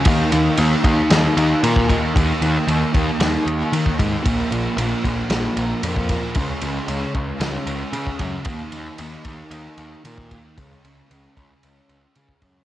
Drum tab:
RD |x-x-x-x-x-x-x-x-|x-x-x-x-x-x-x-x-|x-x-x-x-x-x-x-x-|x-x-x-x-x-x-x-x-|
SD |--------o-------|--------o-------|--------o-------|--------o-------|
BD |o-----o------oo-|o-----o------oo-|o-----o------oo-|o-----o------oo-|

RD |x-x-x-x-x-x-x-x-|x-x-x-x-x-x-x-x-|
SD |----------------|----------------|
BD |o-----o------oo-|o-----o------oo-|